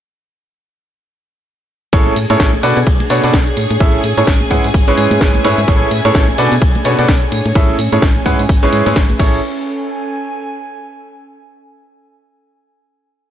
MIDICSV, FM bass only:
0, 0, Header, 1, 2, 480
1, 0, Start_track
1, 0, Key_signature, 3, "major"
1, 0, Tempo, 468750
1, 1975, Time_signature, 4, 2, 24, 8
1, 13624, End_track
2, 0, Start_track
2, 0, Title_t, "FM bass"
2, 0, Program_c, 0, 39
2, 1976, Note_on_c, 0, 33, 96
2, 2157, Note_off_c, 0, 33, 0
2, 2216, Note_on_c, 0, 45, 102
2, 2314, Note_off_c, 0, 45, 0
2, 2356, Note_on_c, 0, 45, 104
2, 2426, Note_off_c, 0, 45, 0
2, 2456, Note_on_c, 0, 33, 90
2, 2637, Note_off_c, 0, 33, 0
2, 2696, Note_on_c, 0, 47, 97
2, 2794, Note_off_c, 0, 47, 0
2, 2836, Note_on_c, 0, 47, 97
2, 2906, Note_off_c, 0, 47, 0
2, 2936, Note_on_c, 0, 35, 94
2, 3117, Note_off_c, 0, 35, 0
2, 3176, Note_on_c, 0, 47, 103
2, 3274, Note_off_c, 0, 47, 0
2, 3316, Note_on_c, 0, 47, 108
2, 3386, Note_off_c, 0, 47, 0
2, 3416, Note_on_c, 0, 35, 91
2, 3597, Note_off_c, 0, 35, 0
2, 3656, Note_on_c, 0, 45, 84
2, 3754, Note_off_c, 0, 45, 0
2, 3795, Note_on_c, 0, 45, 101
2, 3866, Note_off_c, 0, 45, 0
2, 3896, Note_on_c, 0, 33, 105
2, 4077, Note_off_c, 0, 33, 0
2, 4136, Note_on_c, 0, 45, 99
2, 4234, Note_off_c, 0, 45, 0
2, 4275, Note_on_c, 0, 45, 99
2, 4346, Note_off_c, 0, 45, 0
2, 4376, Note_on_c, 0, 33, 92
2, 4557, Note_off_c, 0, 33, 0
2, 4616, Note_on_c, 0, 44, 98
2, 4714, Note_off_c, 0, 44, 0
2, 4755, Note_on_c, 0, 44, 90
2, 4826, Note_off_c, 0, 44, 0
2, 4856, Note_on_c, 0, 32, 96
2, 5037, Note_off_c, 0, 32, 0
2, 5096, Note_on_c, 0, 44, 101
2, 5195, Note_off_c, 0, 44, 0
2, 5236, Note_on_c, 0, 44, 104
2, 5306, Note_off_c, 0, 44, 0
2, 5335, Note_on_c, 0, 32, 91
2, 5516, Note_off_c, 0, 32, 0
2, 5576, Note_on_c, 0, 44, 83
2, 5674, Note_off_c, 0, 44, 0
2, 5715, Note_on_c, 0, 44, 102
2, 5786, Note_off_c, 0, 44, 0
2, 5816, Note_on_c, 0, 33, 100
2, 5997, Note_off_c, 0, 33, 0
2, 6056, Note_on_c, 0, 45, 104
2, 6154, Note_off_c, 0, 45, 0
2, 6195, Note_on_c, 0, 45, 101
2, 6266, Note_off_c, 0, 45, 0
2, 6296, Note_on_c, 0, 33, 97
2, 6477, Note_off_c, 0, 33, 0
2, 6536, Note_on_c, 0, 47, 101
2, 6634, Note_off_c, 0, 47, 0
2, 6675, Note_on_c, 0, 47, 94
2, 6746, Note_off_c, 0, 47, 0
2, 6775, Note_on_c, 0, 35, 92
2, 6957, Note_off_c, 0, 35, 0
2, 7016, Note_on_c, 0, 47, 105
2, 7114, Note_off_c, 0, 47, 0
2, 7155, Note_on_c, 0, 47, 109
2, 7226, Note_off_c, 0, 47, 0
2, 7255, Note_on_c, 0, 35, 91
2, 7436, Note_off_c, 0, 35, 0
2, 7496, Note_on_c, 0, 45, 86
2, 7594, Note_off_c, 0, 45, 0
2, 7635, Note_on_c, 0, 45, 103
2, 7706, Note_off_c, 0, 45, 0
2, 7736, Note_on_c, 0, 33, 96
2, 7917, Note_off_c, 0, 33, 0
2, 7976, Note_on_c, 0, 45, 98
2, 8074, Note_off_c, 0, 45, 0
2, 8115, Note_on_c, 0, 45, 102
2, 8186, Note_off_c, 0, 45, 0
2, 8216, Note_on_c, 0, 33, 94
2, 8397, Note_off_c, 0, 33, 0
2, 8456, Note_on_c, 0, 44, 102
2, 8554, Note_off_c, 0, 44, 0
2, 8596, Note_on_c, 0, 44, 97
2, 8666, Note_off_c, 0, 44, 0
2, 8696, Note_on_c, 0, 32, 95
2, 8877, Note_off_c, 0, 32, 0
2, 8936, Note_on_c, 0, 44, 99
2, 9035, Note_off_c, 0, 44, 0
2, 9076, Note_on_c, 0, 44, 106
2, 9147, Note_off_c, 0, 44, 0
2, 9176, Note_on_c, 0, 32, 91
2, 9357, Note_off_c, 0, 32, 0
2, 9416, Note_on_c, 0, 33, 95
2, 9639, Note_off_c, 0, 33, 0
2, 13624, End_track
0, 0, End_of_file